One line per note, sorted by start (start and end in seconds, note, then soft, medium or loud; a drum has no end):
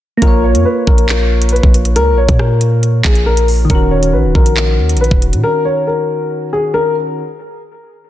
0.17 3.64 A#3 medium
0.22 0.56 A#1 loud
0.22 3.66 F4 medium
0.22 0.42 A#4 loud
0.22 kick loud
0.22 closed hi-hat medium
0.27 3.68 C#5 medium
0.44 0.64 C#5 medium
0.55 0.65 F2 loud
0.55 closed hi-hat medium
0.65 0.86 B4 medium
0.87 1.60 A#1 loud
0.87 1.48 A#4 medium
0.87 kick medium
0.98 closed hi-hat medium
1.09 clap loud
1.42 closed hi-hat medium
1.49 1.73 B4 medium
1.49 closed hi-hat medium
1.56 closed hi-hat soft
1.63 1.97 A#1 loud
1.63 kick loud
1.74 closed hi-hat medium
1.85 closed hi-hat medium
1.96 2.14 C#2 loud
1.96 2.16 A#4 loud
1.96 closed hi-hat medium
2.12 2.28 A#1 loud
2.18 2.38 C#5 medium
2.29 3.02 A#2 loud
2.29 kick loud
2.29 closed hi-hat medium
2.39 3.01 A#4 medium
2.39 cross-stick loud
2.61 closed hi-hat medium
2.83 closed hi-hat medium
3.05 3.67 A#1 loud
3.05 3.25 G#4 medium
3.05 kick medium
3.05 clap loud
3.15 closed hi-hat medium
3.26 3.46 A#4 medium
3.37 closed hi-hat medium
3.48 open hi-hat medium
3.65 7.11 D#3 medium
3.70 4.15 D#1 loud
3.70 7.14 C#4 medium
3.70 3.90 A#4 loud
3.70 kick loud
3.70 closed hi-hat medium
3.75 7.16 F#4 medium
3.91 4.12 C#5 medium
4.03 closed hi-hat medium
4.13 4.26 A#1 loud
4.13 4.33 B4 medium
4.24 4.34 D#1 loud
4.35 4.80 A#1 loud
4.35 4.96 A#4 medium
4.35 kick loud
4.46 closed hi-hat medium
4.57 clap loud
4.79 4.96 D#2 loud
4.89 closed hi-hat medium
4.95 5.10 A#1 loud
4.95 closed hi-hat medium
5.01 5.21 B4 medium
5.01 closed hi-hat soft
5.11 5.34 D#1 loud
5.11 kick loud
5.22 closed hi-hat medium
5.33 5.43 A#2 loud
5.33 closed hi-hat medium
5.44 5.64 A#4 loud
5.65 5.86 C#5 medium
5.87 6.49 A#4 medium
6.53 6.73 G#4 medium
6.74 6.94 A#4 loud